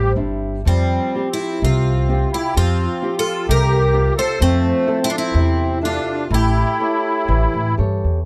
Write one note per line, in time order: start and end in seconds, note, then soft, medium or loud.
0.00 0.12 A1 medium
0.00 0.62 G3 medium
0.00 0.12 G4 medium
0.00 0.13 C5 medium
0.16 0.61 G1 medium
0.16 0.55 C4 soft
0.16 0.56 D4 soft
0.16 0.56 E4 soft
0.65 0.98 F2 medium
0.65 1.59 F3 medium
0.65 1.27 G3 medium
0.65 1.28 C4 medium
1.15 1.91 C4 soft
1.15 1.91 G4 soft
1.30 1.60 C4 medium
1.30 1.62 E4 medium
1.62 2.23 C2 medium
1.62 2.53 C3 medium
1.62 2.29 C4 medium
1.62 2.30 F4 medium
2.09 2.83 C4 soft
2.09 2.84 F4 soft
2.09 2.84 G4 medium
2.32 2.54 E4 medium
2.32 2.55 G4 medium
2.56 2.87 F2 medium
2.56 3.46 F3 medium
2.56 3.14 C4 medium
2.56 3.15 F4 medium
3.02 3.76 C4 soft
3.02 3.76 F4 soft
3.02 3.76 G4 medium
3.18 3.46 F4 medium
3.18 3.47 A4 medium
3.48 4.09 C2 medium
3.48 4.38 C3 medium
3.48 4.14 G4 medium
3.48 4.18 A#4 loud
3.93 4.31 C4 medium
3.93 4.31 F4 soft
3.93 4.31 G4 medium
4.17 4.39 A4 medium
4.17 4.40 C5 medium
4.40 4.72 F2 loud
4.40 5.32 F3 medium
4.40 4.99 A3 medium
4.40 5.06 C4 loud
4.87 5.64 C4 soft
4.87 5.64 E4 medium
4.87 5.64 A4 medium
5.03 5.09 C4 medium
5.03 5.10 E4 loud
5.09 5.16 D4 medium
5.09 5.17 F4 medium
5.16 5.79 C4 medium
5.16 5.80 E4 medium
5.34 5.97 E2 medium
5.34 6.29 C3 medium
5.81 6.28 D4 medium
5.81 6.21 F4 soft
5.81 6.34 F4 medium
5.81 6.21 A4 medium
5.81 6.21 E5 soft
6.31 6.62 A1 medium
6.31 7.26 A3 medium
6.31 7.75 E4 medium
6.31 7.76 G4 medium
6.79 7.58 G4 soft
6.79 7.59 A4 soft
6.79 7.59 C#5 soft
7.28 7.45 A1 medium
7.28 8.25 E3 medium
7.54 7.76 A2 medium
7.77 8.01 G2 medium
7.77 8.18 G4 soft
7.77 8.19 A4 soft
7.77 8.19 C#5 soft
8.04 8.25 E2 medium